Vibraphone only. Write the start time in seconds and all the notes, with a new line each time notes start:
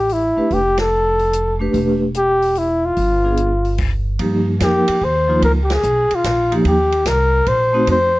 0.36 A3 D4 G4 B4
1.60 A3 D4 G4 B4
1.73 A3 D4 G4 B4
3.24 B3 D4 F4 G#4
4.19 F3 A#3 D#4 G4
4.59 F3 A#3 D#4 A#4
5.28 F3 A#3 D#4 F4
6.51 F3 A#3 D#4 G4
7.73 A3 C4 D#4 F#4